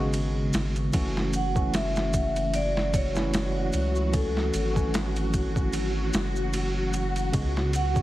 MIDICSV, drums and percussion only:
0, 0, Header, 1, 2, 480
1, 0, Start_track
1, 0, Key_signature, 3, "minor"
1, 0, Tempo, 800000
1, 562, Time_signature, 4, 2, 24, 8
1, 4813, End_track
2, 0, Start_track
2, 0, Title_t, "Drums"
2, 78, Note_on_c, 9, 82, 54
2, 82, Note_on_c, 9, 51, 91
2, 138, Note_off_c, 9, 82, 0
2, 142, Note_off_c, 9, 51, 0
2, 321, Note_on_c, 9, 82, 89
2, 322, Note_on_c, 9, 51, 71
2, 328, Note_on_c, 9, 38, 93
2, 381, Note_off_c, 9, 82, 0
2, 382, Note_off_c, 9, 51, 0
2, 388, Note_off_c, 9, 38, 0
2, 453, Note_on_c, 9, 82, 33
2, 456, Note_on_c, 9, 51, 39
2, 513, Note_off_c, 9, 82, 0
2, 516, Note_off_c, 9, 51, 0
2, 557, Note_on_c, 9, 82, 50
2, 560, Note_on_c, 9, 51, 90
2, 561, Note_on_c, 9, 36, 111
2, 617, Note_off_c, 9, 82, 0
2, 620, Note_off_c, 9, 51, 0
2, 621, Note_off_c, 9, 36, 0
2, 703, Note_on_c, 9, 38, 48
2, 763, Note_off_c, 9, 38, 0
2, 799, Note_on_c, 9, 82, 86
2, 801, Note_on_c, 9, 51, 66
2, 859, Note_off_c, 9, 82, 0
2, 861, Note_off_c, 9, 51, 0
2, 935, Note_on_c, 9, 36, 99
2, 936, Note_on_c, 9, 82, 36
2, 995, Note_off_c, 9, 36, 0
2, 996, Note_off_c, 9, 82, 0
2, 1042, Note_on_c, 9, 51, 84
2, 1048, Note_on_c, 9, 38, 108
2, 1048, Note_on_c, 9, 82, 45
2, 1102, Note_off_c, 9, 51, 0
2, 1108, Note_off_c, 9, 38, 0
2, 1108, Note_off_c, 9, 82, 0
2, 1176, Note_on_c, 9, 82, 37
2, 1183, Note_on_c, 9, 38, 57
2, 1236, Note_off_c, 9, 82, 0
2, 1243, Note_off_c, 9, 38, 0
2, 1281, Note_on_c, 9, 82, 94
2, 1282, Note_on_c, 9, 36, 92
2, 1282, Note_on_c, 9, 51, 63
2, 1341, Note_off_c, 9, 82, 0
2, 1342, Note_off_c, 9, 36, 0
2, 1342, Note_off_c, 9, 51, 0
2, 1416, Note_on_c, 9, 82, 40
2, 1417, Note_on_c, 9, 51, 43
2, 1476, Note_off_c, 9, 82, 0
2, 1477, Note_off_c, 9, 51, 0
2, 1521, Note_on_c, 9, 51, 84
2, 1528, Note_on_c, 9, 82, 53
2, 1581, Note_off_c, 9, 51, 0
2, 1588, Note_off_c, 9, 82, 0
2, 1663, Note_on_c, 9, 38, 46
2, 1723, Note_off_c, 9, 38, 0
2, 1762, Note_on_c, 9, 36, 106
2, 1763, Note_on_c, 9, 51, 67
2, 1763, Note_on_c, 9, 82, 82
2, 1822, Note_off_c, 9, 36, 0
2, 1823, Note_off_c, 9, 51, 0
2, 1823, Note_off_c, 9, 82, 0
2, 1893, Note_on_c, 9, 82, 45
2, 1900, Note_on_c, 9, 38, 51
2, 1953, Note_off_c, 9, 82, 0
2, 1960, Note_off_c, 9, 38, 0
2, 2002, Note_on_c, 9, 51, 93
2, 2004, Note_on_c, 9, 82, 56
2, 2008, Note_on_c, 9, 38, 118
2, 2062, Note_off_c, 9, 51, 0
2, 2064, Note_off_c, 9, 82, 0
2, 2068, Note_off_c, 9, 38, 0
2, 2237, Note_on_c, 9, 82, 82
2, 2241, Note_on_c, 9, 51, 60
2, 2297, Note_off_c, 9, 82, 0
2, 2301, Note_off_c, 9, 51, 0
2, 2374, Note_on_c, 9, 82, 35
2, 2434, Note_off_c, 9, 82, 0
2, 2481, Note_on_c, 9, 51, 92
2, 2481, Note_on_c, 9, 82, 55
2, 2482, Note_on_c, 9, 36, 107
2, 2541, Note_off_c, 9, 51, 0
2, 2541, Note_off_c, 9, 82, 0
2, 2542, Note_off_c, 9, 36, 0
2, 2621, Note_on_c, 9, 38, 40
2, 2681, Note_off_c, 9, 38, 0
2, 2721, Note_on_c, 9, 51, 66
2, 2722, Note_on_c, 9, 82, 84
2, 2781, Note_off_c, 9, 51, 0
2, 2782, Note_off_c, 9, 82, 0
2, 2857, Note_on_c, 9, 36, 94
2, 2859, Note_on_c, 9, 82, 39
2, 2917, Note_off_c, 9, 36, 0
2, 2919, Note_off_c, 9, 82, 0
2, 2964, Note_on_c, 9, 51, 83
2, 2967, Note_on_c, 9, 82, 53
2, 2970, Note_on_c, 9, 38, 111
2, 3024, Note_off_c, 9, 51, 0
2, 3027, Note_off_c, 9, 82, 0
2, 3030, Note_off_c, 9, 38, 0
2, 3095, Note_on_c, 9, 82, 39
2, 3099, Note_on_c, 9, 51, 43
2, 3155, Note_off_c, 9, 82, 0
2, 3159, Note_off_c, 9, 51, 0
2, 3201, Note_on_c, 9, 82, 94
2, 3202, Note_on_c, 9, 36, 93
2, 3202, Note_on_c, 9, 51, 69
2, 3261, Note_off_c, 9, 82, 0
2, 3262, Note_off_c, 9, 36, 0
2, 3262, Note_off_c, 9, 51, 0
2, 3336, Note_on_c, 9, 36, 99
2, 3338, Note_on_c, 9, 82, 36
2, 3396, Note_off_c, 9, 36, 0
2, 3398, Note_off_c, 9, 82, 0
2, 3438, Note_on_c, 9, 82, 58
2, 3440, Note_on_c, 9, 51, 84
2, 3498, Note_off_c, 9, 82, 0
2, 3500, Note_off_c, 9, 51, 0
2, 3681, Note_on_c, 9, 51, 72
2, 3681, Note_on_c, 9, 82, 99
2, 3687, Note_on_c, 9, 38, 123
2, 3741, Note_off_c, 9, 51, 0
2, 3741, Note_off_c, 9, 82, 0
2, 3747, Note_off_c, 9, 38, 0
2, 3816, Note_on_c, 9, 82, 45
2, 3876, Note_off_c, 9, 82, 0
2, 3919, Note_on_c, 9, 82, 60
2, 3921, Note_on_c, 9, 51, 91
2, 3979, Note_off_c, 9, 82, 0
2, 3981, Note_off_c, 9, 51, 0
2, 4161, Note_on_c, 9, 82, 89
2, 4162, Note_on_c, 9, 51, 62
2, 4221, Note_off_c, 9, 82, 0
2, 4222, Note_off_c, 9, 51, 0
2, 4296, Note_on_c, 9, 51, 45
2, 4301, Note_on_c, 9, 82, 41
2, 4356, Note_off_c, 9, 51, 0
2, 4361, Note_off_c, 9, 82, 0
2, 4401, Note_on_c, 9, 51, 95
2, 4402, Note_on_c, 9, 36, 112
2, 4406, Note_on_c, 9, 82, 51
2, 4461, Note_off_c, 9, 51, 0
2, 4462, Note_off_c, 9, 36, 0
2, 4466, Note_off_c, 9, 82, 0
2, 4542, Note_on_c, 9, 38, 46
2, 4602, Note_off_c, 9, 38, 0
2, 4640, Note_on_c, 9, 51, 64
2, 4646, Note_on_c, 9, 82, 89
2, 4700, Note_off_c, 9, 51, 0
2, 4706, Note_off_c, 9, 82, 0
2, 4775, Note_on_c, 9, 82, 40
2, 4776, Note_on_c, 9, 36, 101
2, 4813, Note_off_c, 9, 36, 0
2, 4813, Note_off_c, 9, 82, 0
2, 4813, End_track
0, 0, End_of_file